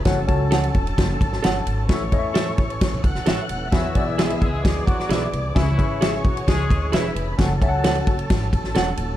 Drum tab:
RD |x-x-xxxxx-x-x-x-|x-x-x-xxx-x-x-x-|x-x-xxx-x-x-x-x-|x-x-x-xxx-x-x-x-|
SD |o---o---o--oo---|o---o---o--oo---|o---o---o--oo---|o---o---o---o---|
BD |o-o---o-o-o-----|o-o---o-o-o-----|o-o---o-o-o-----|o-o---o-o-o-----|

RD |x-x-xxxxx-x-x-x-|
SD |o---o---o--oo---|
BD |o-o---o-o-o-----|